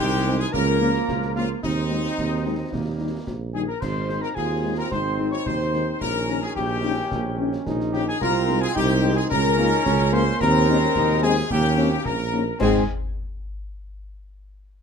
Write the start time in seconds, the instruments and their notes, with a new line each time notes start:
Already playing: trombone section D#3 G#3, euphonium D#4
0.00 tuba C2, trumpet section G4, woodwind section G4, piccolo G5
0.26 french horn section G#3 C4 D#4
0.38 woodwind section G#4, trumpet section G#4, piccolo G#5
0.52 tuba C#2, trombone section F3 A#3, euphonium C#4, woodwind section A#4, trumpet section A#4, piccolo A#5, concert bass drum, snare
0.81 french horn section F3 A#3 C#4, euphonium A#3
0.95 snare
1.09 tuba C#2, concert bass drum, snare
1.22 snare
1.35 french horn section F3 A#3 C#4, woodwind section F4, trumpet section F4, piccolo F5, snare
1.63 tuba D#2, trombone section G#3 C4, euphonium C4, trumpet section D#4, woodwind section D#4, piccolo D#5, concert bass drum, snare, crash
1.90 french horn section D#3 G#3 C4, snare
2.04 snare
2.18 tuba D#2, concert bass drum, snare
2.45 french horn section D#3 G#3 C4
2.72 tuba D#2, trombone section G3 A#3, concert bass drum, snare
3.00 french horn section D#3 G3 D#4
3.27 tuba A#1, concert bass drum, snare
3.53 french horn section D#3 G3 D#4, trumpet section G#4, woodwind section G#4, piccolo G#5
3.68 woodwind section A#4, trumpet section A#4, piccolo A#5
3.80 tuba G#1, trombone section D#3 C4, euphonium D#4, woodwind section C5, trumpet section C5, piccolo C6, concert bass drum, snare, crash
4.09 french horn section D#3 G#3 D#4, snare
4.21 woodwind section A#4, trumpet section A#4, piccolo A#5, snare
4.35 tuba D#2, euphonium F4, trumpet section G#4, woodwind section G#4, piccolo G#5, concert bass drum, snare
4.64 french horn section D#3 G#3 D#4
4.77 woodwind section A#4, trumpet section A#4, piccolo A#5
4.91 tuba G#1, euphonium D#4, trumpet section C5, woodwind section C5, piccolo C6, concert bass drum, snare
5.18 french horn section D#3 G#3 D#4
5.31 woodwind section C#5, trumpet section C#5, piccolo C#6, snare
5.45 tuba D#2, woodwind section C5, trumpet section C5, piccolo C6, concert bass drum, snare
5.60 snare
5.74 french horn section D#3 G#3 D#4, snare
6.01 tuba A#1, trombone section D#3 C#4, trumpet section A#4, woodwind section A#4, piccolo A#5, concert bass drum, snare, crash
6.29 french horn section D#3 C#4 D#4, snare
6.41 woodwind section G#4, trumpet section G#4, piccolo G#5, snare
6.55 tuba A#1, trumpet section G4, woodwind section G4, piccolo G5, concert bass drum, snare
6.83 french horn section D#3 C#4 D#4
7.11 tuba A#1, euphonium A#3, concert bass drum, snare
7.38 french horn section D#3 C#4 D#4, euphonium C#4
7.53 snare
7.66 tuba A#1, euphonium D#4, concert bass drum, snare
7.80 snare
7.93 french horn section D#3 C#4 D#4, trumpet section G4, woodwind section G4, piccolo G5, snare
8.07 woodwind section G#4, trumpet section G#4, piccolo G#5
8.20 tuba C2, trombone section G#3 C4, euphonium F4, trumpet section A#4, woodwind section A#4, piccolo A#5, concert bass drum, snare, crash
8.48 french horn section G#3 C4 D#4, snare
8.61 trumpet section G#4, woodwind section G#4, piccolo G#5, snare
8.74 tuba C2, euphonium D#4, trumpet section G4, woodwind section G4, piccolo G5, concert bass drum, snare
9.03 french horn section G#3 C4 D#4
9.15 woodwind section G#4, trumpet section G#4, piccolo G#5
9.30 tuba C#2, trombone section C#4, euphonium C#4, trumpet section A#4, woodwind section A#4, piccolo A#5, concert bass drum, snare
9.58 french horn section G#3 A#3 F4, euphonium D#4
9.72 snare
9.86 tuba C#2, euphonium C#4, concert bass drum, snare
10.00 snare
10.12 french horn section G#3 A#3 F4, euphonium A#3, trumpet section C5, woodwind section C5, piccolo C6, snare
10.39 tuba D#2, trombone section G#3 C4, euphonium C4, woodwind section A#4, trumpet section A#4, piccolo A#5, concert bass drum, snare, crash
10.68 french horn section G#3 C4 D#4, euphonium C#4, snare
10.82 snare
10.96 tuba D#2, euphonium D#4, concert bass drum, snare
11.22 french horn section G#3 C4 D#4, euphonium C4, trumpet section G#4, woodwind section G#4, piccolo G#5
11.50 tuba D#2, trombone section A#3 C#4, euphonium A#3, trumpet section G4, woodwind section G4, piccolo G5, concert bass drum, snare
11.77 french horn section A#3 C#4 D#4, euphonium C4
12.05 tuba A#1, euphonium C#4, trumpet section A#4, woodwind section A#4, piccolo A#5, concert bass drum, snare
12.32 french horn section A#3 C#4 D#4
12.60 tuba G#2, trombone section G#3 C4, french horn section G#3 C4 D#4, trumpet section G#4, woodwind section G#4, piccolo G#5, concert bass drum, snare, crash